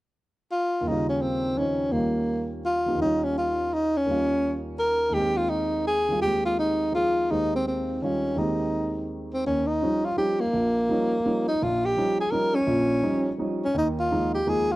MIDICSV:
0, 0, Header, 1, 3, 480
1, 0, Start_track
1, 0, Tempo, 357782
1, 1155, Time_signature, 3, 2, 24, 8
1, 19799, End_track
2, 0, Start_track
2, 0, Title_t, "Tenor saxophone"
2, 0, Program_c, 0, 66
2, 694, Note_on_c, 0, 65, 79
2, 1183, Note_on_c, 0, 63, 70
2, 1203, Note_off_c, 0, 65, 0
2, 1455, Note_off_c, 0, 63, 0
2, 1463, Note_on_c, 0, 61, 68
2, 1638, Note_on_c, 0, 60, 69
2, 1658, Note_off_c, 0, 61, 0
2, 2123, Note_on_c, 0, 61, 82
2, 2143, Note_off_c, 0, 60, 0
2, 2579, Note_on_c, 0, 58, 69
2, 2599, Note_off_c, 0, 61, 0
2, 3379, Note_off_c, 0, 58, 0
2, 3561, Note_on_c, 0, 65, 79
2, 4009, Note_off_c, 0, 65, 0
2, 4043, Note_on_c, 0, 63, 82
2, 4344, Note_on_c, 0, 61, 73
2, 4364, Note_off_c, 0, 63, 0
2, 4520, Note_off_c, 0, 61, 0
2, 4538, Note_on_c, 0, 65, 78
2, 5012, Note_on_c, 0, 63, 87
2, 5032, Note_off_c, 0, 65, 0
2, 5326, Note_on_c, 0, 61, 81
2, 5346, Note_off_c, 0, 63, 0
2, 6123, Note_off_c, 0, 61, 0
2, 6429, Note_on_c, 0, 70, 90
2, 6891, Note_on_c, 0, 67, 90
2, 6911, Note_off_c, 0, 70, 0
2, 7205, Note_on_c, 0, 65, 89
2, 7225, Note_off_c, 0, 67, 0
2, 7378, Note_on_c, 0, 63, 80
2, 7398, Note_off_c, 0, 65, 0
2, 7868, Note_off_c, 0, 63, 0
2, 7876, Note_on_c, 0, 68, 97
2, 8329, Note_off_c, 0, 68, 0
2, 8341, Note_on_c, 0, 67, 88
2, 8641, Note_off_c, 0, 67, 0
2, 8660, Note_on_c, 0, 65, 85
2, 8829, Note_off_c, 0, 65, 0
2, 8843, Note_on_c, 0, 63, 76
2, 9293, Note_off_c, 0, 63, 0
2, 9324, Note_on_c, 0, 65, 89
2, 9809, Note_on_c, 0, 63, 82
2, 9829, Note_off_c, 0, 65, 0
2, 10118, Note_off_c, 0, 63, 0
2, 10137, Note_on_c, 0, 60, 76
2, 10288, Note_off_c, 0, 60, 0
2, 10296, Note_on_c, 0, 60, 64
2, 10772, Note_on_c, 0, 61, 76
2, 10792, Note_off_c, 0, 60, 0
2, 11247, Note_on_c, 0, 63, 68
2, 11268, Note_off_c, 0, 61, 0
2, 12209, Note_off_c, 0, 63, 0
2, 12521, Note_on_c, 0, 60, 70
2, 12680, Note_off_c, 0, 60, 0
2, 12695, Note_on_c, 0, 61, 77
2, 12970, Note_on_c, 0, 63, 78
2, 12990, Note_off_c, 0, 61, 0
2, 13485, Note_on_c, 0, 65, 69
2, 13505, Note_off_c, 0, 63, 0
2, 13647, Note_off_c, 0, 65, 0
2, 13655, Note_on_c, 0, 67, 85
2, 13957, Note_on_c, 0, 58, 86
2, 13977, Note_off_c, 0, 67, 0
2, 15394, Note_off_c, 0, 58, 0
2, 15402, Note_on_c, 0, 63, 85
2, 15609, Note_on_c, 0, 65, 84
2, 15629, Note_off_c, 0, 63, 0
2, 15898, Note_on_c, 0, 67, 101
2, 15919, Note_off_c, 0, 65, 0
2, 16365, Note_off_c, 0, 67, 0
2, 16376, Note_on_c, 0, 68, 77
2, 16516, Note_on_c, 0, 70, 88
2, 16536, Note_off_c, 0, 68, 0
2, 16844, Note_on_c, 0, 61, 90
2, 16864, Note_off_c, 0, 70, 0
2, 17879, Note_off_c, 0, 61, 0
2, 18309, Note_on_c, 0, 61, 84
2, 18449, Note_off_c, 0, 61, 0
2, 18488, Note_on_c, 0, 63, 80
2, 18615, Note_off_c, 0, 63, 0
2, 18782, Note_on_c, 0, 65, 86
2, 19210, Note_off_c, 0, 65, 0
2, 19247, Note_on_c, 0, 67, 83
2, 19439, Note_on_c, 0, 68, 104
2, 19459, Note_off_c, 0, 67, 0
2, 19744, Note_on_c, 0, 65, 89
2, 19764, Note_off_c, 0, 68, 0
2, 19799, Note_off_c, 0, 65, 0
2, 19799, End_track
3, 0, Start_track
3, 0, Title_t, "Grand piano"
3, 0, Program_c, 1, 0
3, 1084, Note_on_c, 1, 39, 49
3, 1111, Note_on_c, 1, 51, 46
3, 1156, Note_on_c, 1, 55, 45
3, 1189, Note_on_c, 1, 49, 46
3, 1229, Note_on_c, 1, 65, 55
3, 2083, Note_off_c, 1, 51, 0
3, 2103, Note_on_c, 1, 51, 39
3, 2104, Note_on_c, 1, 53, 35
3, 2124, Note_on_c, 1, 72, 31
3, 2137, Note_on_c, 1, 63, 40
3, 2540, Note_off_c, 1, 39, 0
3, 2560, Note_on_c, 1, 39, 36
3, 2561, Note_off_c, 1, 51, 0
3, 2575, Note_off_c, 1, 55, 0
3, 2582, Note_on_c, 1, 51, 36
3, 2593, Note_off_c, 1, 53, 0
3, 2596, Note_on_c, 1, 55, 38
3, 2602, Note_off_c, 1, 72, 0
3, 2607, Note_on_c, 1, 61, 40
3, 2609, Note_off_c, 1, 63, 0
3, 2610, Note_off_c, 1, 65, 0
3, 2617, Note_off_c, 1, 49, 0
3, 2631, Note_on_c, 1, 65, 46
3, 3837, Note_on_c, 1, 53, 45
3, 3858, Note_on_c, 1, 58, 37
3, 3865, Note_on_c, 1, 63, 39
3, 3877, Note_on_c, 1, 67, 47
3, 3933, Note_off_c, 1, 39, 0
3, 3953, Note_on_c, 1, 39, 45
3, 3975, Note_off_c, 1, 51, 0
3, 3995, Note_on_c, 1, 51, 48
3, 4005, Note_off_c, 1, 55, 0
3, 4025, Note_on_c, 1, 55, 52
3, 4026, Note_off_c, 1, 53, 0
3, 4036, Note_off_c, 1, 58, 0
3, 4038, Note_off_c, 1, 61, 0
3, 4040, Note_off_c, 1, 63, 0
3, 4046, Note_off_c, 1, 67, 0
3, 4058, Note_off_c, 1, 65, 0
3, 4058, Note_on_c, 1, 61, 47
3, 4099, Note_on_c, 1, 65, 53
3, 5418, Note_off_c, 1, 39, 0
3, 5436, Note_off_c, 1, 51, 0
3, 5438, Note_on_c, 1, 39, 44
3, 5445, Note_off_c, 1, 55, 0
3, 5456, Note_on_c, 1, 51, 38
3, 5464, Note_off_c, 1, 61, 0
3, 5465, Note_on_c, 1, 55, 38
3, 5484, Note_on_c, 1, 61, 41
3, 5489, Note_off_c, 1, 65, 0
3, 5509, Note_on_c, 1, 65, 51
3, 6816, Note_off_c, 1, 39, 0
3, 6836, Note_on_c, 1, 39, 46
3, 6853, Note_off_c, 1, 51, 0
3, 6873, Note_on_c, 1, 51, 44
3, 6907, Note_on_c, 1, 56, 40
3, 6917, Note_off_c, 1, 55, 0
3, 6927, Note_off_c, 1, 61, 0
3, 6939, Note_off_c, 1, 65, 0
3, 6943, Note_on_c, 1, 60, 45
3, 6987, Note_on_c, 1, 79, 56
3, 8143, Note_off_c, 1, 51, 0
3, 8163, Note_on_c, 1, 51, 42
3, 8185, Note_on_c, 1, 55, 41
3, 8212, Note_on_c, 1, 65, 46
3, 8307, Note_off_c, 1, 39, 0
3, 8326, Note_off_c, 1, 51, 0
3, 8328, Note_on_c, 1, 39, 42
3, 8339, Note_off_c, 1, 56, 0
3, 8346, Note_on_c, 1, 51, 45
3, 8358, Note_off_c, 1, 60, 0
3, 8360, Note_on_c, 1, 56, 48
3, 8363, Note_off_c, 1, 55, 0
3, 8377, Note_off_c, 1, 65, 0
3, 8378, Note_on_c, 1, 60, 38
3, 8399, Note_off_c, 1, 79, 0
3, 8401, Note_on_c, 1, 67, 54
3, 9276, Note_off_c, 1, 60, 0
3, 9287, Note_on_c, 1, 53, 40
3, 9296, Note_on_c, 1, 60, 38
3, 9318, Note_on_c, 1, 63, 33
3, 9332, Note_on_c, 1, 68, 46
3, 9775, Note_off_c, 1, 39, 0
3, 9785, Note_off_c, 1, 56, 0
3, 9789, Note_off_c, 1, 51, 0
3, 9789, Note_off_c, 1, 53, 0
3, 9794, Note_off_c, 1, 60, 0
3, 9794, Note_off_c, 1, 67, 0
3, 9795, Note_on_c, 1, 39, 41
3, 9804, Note_off_c, 1, 63, 0
3, 9806, Note_on_c, 1, 56, 39
3, 9809, Note_on_c, 1, 51, 35
3, 9812, Note_off_c, 1, 68, 0
3, 9814, Note_on_c, 1, 67, 47
3, 9816, Note_on_c, 1, 72, 41
3, 10733, Note_off_c, 1, 51, 0
3, 10753, Note_on_c, 1, 51, 37
3, 10771, Note_on_c, 1, 55, 40
3, 10790, Note_on_c, 1, 65, 47
3, 11182, Note_off_c, 1, 39, 0
3, 11202, Note_on_c, 1, 39, 46
3, 11204, Note_off_c, 1, 51, 0
3, 11222, Note_off_c, 1, 56, 0
3, 11225, Note_on_c, 1, 51, 46
3, 11242, Note_on_c, 1, 56, 45
3, 11251, Note_off_c, 1, 55, 0
3, 11253, Note_off_c, 1, 67, 0
3, 11254, Note_off_c, 1, 72, 0
3, 11254, Note_on_c, 1, 60, 46
3, 11261, Note_off_c, 1, 65, 0
3, 11281, Note_on_c, 1, 67, 50
3, 12666, Note_off_c, 1, 39, 0
3, 12677, Note_off_c, 1, 51, 0
3, 12686, Note_off_c, 1, 56, 0
3, 12692, Note_off_c, 1, 60, 0
3, 12701, Note_on_c, 1, 39, 55
3, 12706, Note_off_c, 1, 67, 0
3, 13111, Note_off_c, 1, 39, 0
3, 13176, Note_on_c, 1, 53, 51
3, 13177, Note_on_c, 1, 61, 48
3, 13184, Note_on_c, 1, 55, 45
3, 13187, Note_on_c, 1, 63, 55
3, 13498, Note_off_c, 1, 53, 0
3, 13498, Note_off_c, 1, 61, 0
3, 13502, Note_off_c, 1, 55, 0
3, 13504, Note_off_c, 1, 63, 0
3, 13636, Note_on_c, 1, 53, 46
3, 13647, Note_on_c, 1, 61, 46
3, 13649, Note_on_c, 1, 63, 46
3, 13650, Note_on_c, 1, 55, 45
3, 13968, Note_off_c, 1, 53, 0
3, 13973, Note_off_c, 1, 61, 0
3, 13974, Note_off_c, 1, 55, 0
3, 13974, Note_off_c, 1, 63, 0
3, 14132, Note_on_c, 1, 34, 55
3, 14544, Note_off_c, 1, 34, 0
3, 14612, Note_on_c, 1, 53, 56
3, 14612, Note_on_c, 1, 55, 45
3, 14626, Note_on_c, 1, 61, 49
3, 14631, Note_on_c, 1, 63, 55
3, 14935, Note_off_c, 1, 53, 0
3, 14935, Note_off_c, 1, 55, 0
3, 14942, Note_off_c, 1, 61, 0
3, 14944, Note_off_c, 1, 63, 0
3, 15092, Note_on_c, 1, 55, 41
3, 15098, Note_on_c, 1, 53, 50
3, 15106, Note_on_c, 1, 61, 44
3, 15108, Note_on_c, 1, 63, 56
3, 15414, Note_off_c, 1, 55, 0
3, 15417, Note_off_c, 1, 53, 0
3, 15421, Note_off_c, 1, 61, 0
3, 15422, Note_off_c, 1, 63, 0
3, 15588, Note_on_c, 1, 46, 56
3, 15593, Note_on_c, 1, 34, 67
3, 15991, Note_off_c, 1, 46, 0
3, 15994, Note_off_c, 1, 34, 0
3, 16056, Note_on_c, 1, 53, 54
3, 16064, Note_on_c, 1, 55, 47
3, 16064, Note_on_c, 1, 61, 44
3, 16071, Note_on_c, 1, 63, 53
3, 16375, Note_off_c, 1, 53, 0
3, 16379, Note_off_c, 1, 55, 0
3, 16379, Note_off_c, 1, 61, 0
3, 16383, Note_off_c, 1, 63, 0
3, 16522, Note_on_c, 1, 53, 46
3, 16523, Note_on_c, 1, 55, 41
3, 16531, Note_on_c, 1, 61, 42
3, 16533, Note_on_c, 1, 63, 56
3, 16848, Note_off_c, 1, 53, 0
3, 16848, Note_off_c, 1, 55, 0
3, 16852, Note_off_c, 1, 61, 0
3, 16853, Note_off_c, 1, 63, 0
3, 16997, Note_on_c, 1, 34, 62
3, 17003, Note_on_c, 1, 46, 62
3, 17413, Note_off_c, 1, 34, 0
3, 17416, Note_off_c, 1, 46, 0
3, 17476, Note_on_c, 1, 53, 49
3, 17478, Note_on_c, 1, 55, 50
3, 17483, Note_on_c, 1, 63, 55
3, 17492, Note_on_c, 1, 61, 42
3, 17803, Note_off_c, 1, 53, 0
3, 17804, Note_off_c, 1, 55, 0
3, 17807, Note_off_c, 1, 63, 0
3, 17811, Note_off_c, 1, 61, 0
3, 17953, Note_on_c, 1, 53, 48
3, 17959, Note_on_c, 1, 55, 40
3, 17969, Note_on_c, 1, 61, 43
3, 17969, Note_on_c, 1, 63, 54
3, 18281, Note_off_c, 1, 53, 0
3, 18284, Note_off_c, 1, 55, 0
3, 18289, Note_off_c, 1, 61, 0
3, 18289, Note_off_c, 1, 63, 0
3, 18437, Note_on_c, 1, 39, 67
3, 18438, Note_on_c, 1, 51, 59
3, 18851, Note_off_c, 1, 39, 0
3, 18852, Note_off_c, 1, 51, 0
3, 18932, Note_on_c, 1, 39, 52
3, 18935, Note_on_c, 1, 53, 47
3, 18944, Note_on_c, 1, 63, 62
3, 18945, Note_on_c, 1, 56, 43
3, 19249, Note_off_c, 1, 39, 0
3, 19251, Note_off_c, 1, 53, 0
3, 19255, Note_off_c, 1, 63, 0
3, 19256, Note_off_c, 1, 56, 0
3, 19406, Note_on_c, 1, 39, 51
3, 19410, Note_on_c, 1, 53, 45
3, 19411, Note_on_c, 1, 56, 46
3, 19416, Note_on_c, 1, 63, 53
3, 19726, Note_off_c, 1, 39, 0
3, 19728, Note_off_c, 1, 53, 0
3, 19728, Note_off_c, 1, 56, 0
3, 19730, Note_off_c, 1, 63, 0
3, 19799, End_track
0, 0, End_of_file